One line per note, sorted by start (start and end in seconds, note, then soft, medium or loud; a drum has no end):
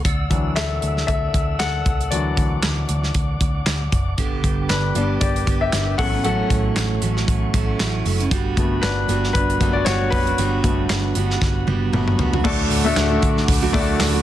0.05 0.26 D2 medium
0.05 4.14 D5 medium
0.05 4.14 F#5 medium
0.05 2.10 E6 medium
0.05 kick medium
0.05 closed hi-hat medium
0.30 0.52 D2 medium
0.30 0.66 E3 soft
0.30 0.66 F#3 soft
0.30 0.66 D4 medium
0.30 kick medium
0.30 closed hi-hat medium
0.56 0.78 D2 loud
0.56 1.05 A4 medium
0.56 1.04 E5 medium
0.56 snare loud
0.56 clap medium
0.56 closed hi-hat medium
0.82 1.04 D2 medium
0.82 closed hi-hat medium
0.97 snare soft
1.07 1.29 D2 loud
1.07 1.57 A4 medium
1.07 1.56 E5 medium
1.07 kick medium
1.07 closed hi-hat medium
1.34 1.55 D2 medium
1.34 kick medium
1.34 closed hi-hat medium
1.59 1.81 D2 medium
1.59 2.09 A4 medium
1.59 2.13 F#5 loud
1.59 snare loud
1.59 clap medium
1.59 closed hi-hat medium
1.86 2.07 C#2 medium
1.86 kick medium
1.86 closed hi-hat medium
2.01 closed hi-hat soft
2.10 2.33 D2 medium
2.10 2.85 E3 soft
2.10 2.85 F#3 soft
2.10 2.86 D4 medium
2.10 3.63 F#4 medium
2.10 3.62 D5 medium
2.10 5.95 D6 medium
2.10 closed hi-hat medium
2.37 2.58 D2 medium
2.37 kick medium
2.37 closed hi-hat medium
2.63 2.84 D2 medium
2.63 snare medium
2.63 clap medium
2.63 closed hi-hat medium
2.89 3.10 D2 medium
2.89 closed hi-hat medium
3.03 snare soft
3.14 3.36 D2 medium
3.14 kick medium
3.14 closed hi-hat medium
3.41 3.62 D2 medium
3.41 kick medium
3.41 closed hi-hat medium
3.66 3.88 D2 medium
3.66 snare loud
3.66 clap medium
3.66 closed hi-hat medium
3.92 4.13 F#1 medium
3.92 kick medium
3.92 closed hi-hat medium
4.18 4.39 G1 medium
4.18 4.95 G2 medium
4.18 4.96 D3 medium
4.18 4.94 G3 medium
4.18 4.94 B3 medium
4.18 4.95 D4 medium
4.18 4.96 G4 medium
4.18 5.97 B4 medium
4.18 5.97 G5 medium
4.18 kick loud
4.18 closed hi-hat medium
4.44 4.65 G1 medium
4.44 kick medium
4.44 closed hi-hat medium
4.69 4.91 G1 medium
4.69 4.94 D4 medium
4.69 5.23 B4 medium
4.69 snare medium
4.69 clap medium
4.69 closed hi-hat medium
4.95 5.16 G1 medium
4.95 5.45 G3 medium
4.95 5.31 G3 medium
4.95 5.31 B3 soft
4.95 5.46 B3 medium
4.95 5.31 D4 medium
4.95 5.46 D4 medium
4.95 5.47 G4 medium
4.95 closed hi-hat medium
5.21 5.42 G1 medium
5.21 5.59 G4 medium
5.21 5.58 D5 medium
5.21 kick medium
5.21 closed hi-hat medium
5.36 closed hi-hat soft
5.46 5.68 G1 medium
5.46 5.71 G3 medium
5.46 5.72 B3 medium
5.46 5.73 D4 medium
5.46 5.73 G4 medium
5.46 kick medium
5.46 closed hi-hat medium
5.61 5.97 G4 medium
5.61 6.00 E5 medium
5.72 5.94 G1 medium
5.72 5.98 G3 medium
5.72 5.99 B3 medium
5.72 5.99 D4 medium
5.72 6.00 G4 medium
5.72 snare loud
5.72 clap medium
5.72 closed hi-hat medium
5.98 6.41 A1 medium
5.98 8.01 F#3 soft
5.98 6.13 F#3 medium
5.98 6.13 A3 medium
5.98 8.01 B3 soft
5.98 8.02 C#4 medium
5.98 6.12 C#4 medium
5.98 6.11 E4 medium
5.98 8.29 A4 medium
5.98 6.23 A4 medium
5.98 6.23 F#5 medium
5.98 12.41 F#5 medium
5.98 8.29 C#6 medium
5.98 kick medium
5.98 open hi-hat medium
6.13 6.24 A3 soft
6.13 6.24 C#4 medium
6.13 6.24 E4 medium
6.24 7.02 A2 medium
6.24 7.01 F#3 medium
6.24 7.01 A3 medium
6.24 7.02 C#4 loud
6.24 7.02 E4 medium
6.24 6.99 A4 medium
6.24 6.98 F#5 medium
6.24 closed hi-hat medium
6.50 6.72 A1 medium
6.50 kick medium
6.50 closed hi-hat medium
6.76 6.97 A1 medium
6.76 snare loud
6.76 clap medium
6.76 closed hi-hat medium
7.01 7.23 A1 medium
7.01 7.53 F#3 medium
7.01 7.53 A3 medium
7.01 7.54 C#4 medium
7.01 7.54 E4 medium
7.01 closed hi-hat medium
7.17 snare soft
7.28 7.49 A1 medium
7.28 kick medium
7.28 closed hi-hat medium
7.53 7.75 A1 medium
7.53 7.78 F#3 medium
7.53 7.79 A3 medium
7.53 7.79 C#4 medium
7.53 7.80 E4 medium
7.53 kick medium
7.53 closed hi-hat medium
7.79 8.01 A1 medium
7.79 8.04 F#3 medium
7.79 8.05 A3 medium
7.79 8.05 C#4 medium
7.79 8.06 E4 medium
7.79 snare loud
7.79 clap medium
7.79 closed hi-hat medium
8.05 8.27 F#1 medium
8.05 8.20 F#3 medium
8.05 8.20 A3 medium
8.05 8.20 C#4 medium
8.05 8.18 E4 medium
8.05 open hi-hat medium
8.20 8.31 A3 soft
8.20 8.32 C#4 medium
8.20 8.31 E4 medium
8.20 closed hi-hat soft
8.31 8.53 G1 medium
8.31 9.07 G3 medium
8.31 12.41 G3 medium
8.31 9.08 B3 medium
8.31 9.09 D4 medium
8.31 9.10 F#4 medium
8.31 12.41 B5 medium
8.31 kick loud
8.31 closed hi-hat medium
8.57 8.78 G1 medium
8.57 9.59 A3 soft
8.57 9.60 B3 medium
8.57 9.74 F#4 medium
8.57 kick medium
8.57 closed hi-hat medium
8.82 9.04 G1 loud
8.82 9.32 D4 medium
8.82 9.32 B4 medium
8.82 snare loud
8.82 clap medium
8.82 closed hi-hat medium
9.08 9.30 G1 medium
9.08 9.59 G3 medium
9.08 9.60 B3 medium
9.08 9.61 D4 medium
9.08 9.62 F#4 medium
9.08 closed hi-hat medium
9.24 snare soft
9.33 9.56 G1 medium
9.33 9.73 D4 medium
9.33 9.76 B4 medium
9.33 kick medium
9.33 closed hi-hat medium
9.50 closed hi-hat soft
9.60 9.82 G1 medium
9.60 9.84 F#3 soft
9.60 9.85 G3 medium
9.60 9.84 A3 soft
9.60 9.86 B3 medium
9.60 9.84 B3 soft
9.60 9.87 D4 medium
9.60 9.87 F#4 medium
9.60 kick medium
9.60 closed hi-hat medium
9.73 9.86 F#4 medium
9.73 9.86 D5 medium
9.85 10.08 G1 medium
9.85 10.11 G3 medium
9.85 10.12 B3 medium
9.85 10.12 D4 medium
9.85 9.93 F#4 medium
9.85 10.13 F#4 medium
9.85 9.91 C#5 medium
9.85 snare loud
9.85 clap medium
9.85 closed hi-hat medium
10.10 10.34 F#1 medium
10.10 10.27 G3 medium
10.10 10.27 B3 medium
10.10 11.90 D4 medium
10.10 10.26 D4 medium
10.10 10.25 F#4 medium
10.10 11.88 B4 loud
10.10 kick medium
10.10 open hi-hat medium
10.27 10.38 B3 soft
10.27 10.38 D4 medium
10.27 10.38 F#4 medium
10.27 closed hi-hat soft
10.38 10.59 G1 loud
10.38 11.14 G3 medium
10.38 11.15 B3 medium
10.38 11.16 D4 medium
10.38 11.17 F#4 medium
10.38 closed hi-hat medium
10.63 10.85 G1 medium
10.63 11.38 A3 soft
10.63 11.38 B3 medium
10.63 11.37 F#4 soft
10.63 kick medium
10.63 closed hi-hat medium
10.89 11.11 G1 loud
10.89 snare loud
10.89 clap medium
10.89 closed hi-hat medium
11.15 11.37 G1 medium
11.15 11.66 G3 medium
11.15 11.66 B3 medium
11.15 11.68 D4 medium
11.15 11.69 F#4 medium
11.15 closed hi-hat medium
11.30 snare soft
11.41 11.63 G1 loud
11.41 kick medium
11.41 snare medium
11.67 11.88 G1 medium
11.67 11.92 G3 medium
11.67 11.92 B3 medium
11.67 11.93 D4 medium
11.67 11.94 F#4 medium
11.67 high tom medium
11.93 12.14 G1 medium
11.93 12.16 F#3 soft
11.93 12.17 G3 medium
11.93 12.16 A3 soft
11.93 12.18 B3 medium
11.93 12.17 B3 medium
11.93 12.19 D4 medium
11.93 12.20 F#4 medium
11.93 mid tom medium
12.08 mid tom medium
12.19 12.40 C#2 medium
12.19 12.33 G3 medium
12.19 12.34 B3 medium
12.19 12.33 D4 medium
12.19 12.32 F#4 medium
12.19 floor tom medium
12.33 12.44 B3 soft
12.33 12.44 D4 medium
12.33 12.45 F#4 medium
12.33 floor tom medium
12.44 12.66 D2 loud
12.44 13.18 A2 medium
12.44 12.85 F#3 medium
12.44 12.80 A3 medium
12.44 12.85 A3 medium
12.44 12.80 D4 medium
12.44 12.85 D4 medium
12.44 12.80 F#4 medium
12.44 12.83 F#4 medium
12.44 14.22 A4 medium
12.44 12.81 A4 medium
12.44 12.81 D5 loud
12.44 14.22 F#5 medium
12.44 14.22 D6 medium
12.44 kick loud
12.44 crash loud
12.71 12.92 D2 loud
12.71 hi-hat pedal medium
12.71 open hi-hat medium
12.84 13.65 A3 loud
12.84 13.11 A3 medium
12.84 13.65 D4 medium
12.84 13.10 D4 medium
12.84 13.09 F#4 medium
12.84 13.65 F#4 medium
12.84 13.66 A4 medium
12.84 13.66 E5 loud
12.96 13.17 D2 loud
12.96 snare loud
12.96 clap medium
12.96 hi-hat pedal medium
12.96 open hi-hat medium
13.10 13.63 A3 medium
13.10 13.62 D4 medium
13.10 13.61 F#4 medium
13.22 13.44 D3 medium
13.22 kick loud
13.22 hi-hat pedal medium
13.22 open hi-hat medium
13.37 snare soft
13.48 13.69 D2 loud
13.48 kick medium
13.48 hi-hat pedal medium
13.48 open hi-hat medium
13.62 14.15 D3 medium
13.62 14.14 F#3 medium
13.62 14.14 A3 medium
13.62 14.14 D4 medium
13.62 14.13 F#4 medium
13.73 13.95 D2 loud
13.73 14.22 A3 loud
13.73 14.22 D4 medium
13.73 13.81 E4 medium
13.73 14.22 A4 medium
13.73 14.22 D5 loud
13.73 kick loud
13.73 hi-hat pedal medium
13.73 open hi-hat medium
13.80 14.22 F#4 medium
14.00 14.21 D2 loud
14.00 snare loud
14.00 clap loud
14.00 hi-hat pedal medium
14.00 open hi-hat loud
14.14 14.22 D3 medium
14.14 14.22 F#3 medium
14.14 14.22 A3 medium
14.14 14.22 D4 medium
14.14 14.22 F#4 medium